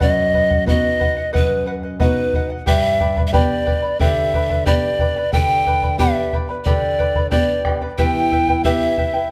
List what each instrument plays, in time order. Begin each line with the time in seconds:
0.00 nylon-string guitar F#2, charango B4 D#5 F#5, pan flute D#5, bombo low
0.34 charango B4 D#5 F#5, bombo low
0.50 charango D#5 F#5, bombo low
0.66 nylon-string guitar B3 D#4 F#4, charango B4 D#5 F#5, pan flute D#5, bombo low
1.00 charango B4 D#5 F#5, bombo low
1.17 charango D#5 F#5
1.33 nylon-string guitar F#2, charango B4 D#5 F#5, pan flute B4, bombo low
1.66 charango B4 D#5 F#5
1.83 charango D#5 F#5
2.00 nylon-string guitar B3 D#4 F#4, charango B4 D#5 F#5, pan flute B4, bombo low
2.33 charango B4 D#5 F#5, bombo low
2.50 charango D#5 F#5
2.66 nylon-string guitar G2, charango G4 B4 D5 G5 B5, pan flute E5, bombo low
3.00 charango B4 D5 G5 B5, bombo low
3.17 charango B4 D5 B5, bombo low
3.27 pan flute E5
3.32 nylon-string guitar B3 D4 G4, charango G4 B4 D5 G5 B5, pan flute D5, bombo low
3.66 charango B4 D5 G5 B5, bombo low
3.82 charango B4 D5 B5
3.99 nylon-string guitar D3, charango G4 B4 D5 G5 B5, pan flute E5, bombo low
4.33 charango B4 D5 G5 B5, bombo low
4.50 charango B4 D5 B5, bombo low
4.66 nylon-string guitar B3 D4 G4, charango G4 B4 D5 G5 B5, pan flute D5, bombo low
4.99 charango B4 D5 G5 B5, bombo low
5.16 charango B4 D5 B5
5.33 nylon-string guitar D3, charango G4 B4 D5 G5 B5, pan flute G5, bombo low
5.66 charango B4 D5 G5 B5, bombo low
5.82 charango B4 D5 B5, bombo low
5.98 nylon-string guitar B3 D4 G4, charango G4 B4 D5 G5 B5, pan flute E5, bombo low
6.33 charango B4 D5 G5 B5, bombo low
6.49 charango B4 D5 B5
6.65 nylon-string guitar D3, charango G4 B4 D5 G5 B5, pan flute D5, bombo low
6.99 charango B4 D5 G5 B5, bombo low
7.15 charango B4 D5 B5, bombo low
7.31 nylon-string guitar B3 D4 G4, charango G4 B4 D5 G5 B5, pan flute D5, bombo low
7.65 charango B4 D5 G5 B5, bombo rim, bombo low
7.81 charango B4 D5 B5
7.98 nylon-string guitar E2, charango E4 G4 B4 E5 G5, pan flute G5, bombo low
8.31 charango E4 B4 E5 G5, bombo low
8.48 charango E4 B4 G5, bombo low
8.64 nylon-string guitar B3 E4 G4, charango E4 G4 B4 E5 G5, pan flute E5, bombo low
8.97 charango E4 B4 E5 G5, bombo low
9.14 charango E4 B4 G5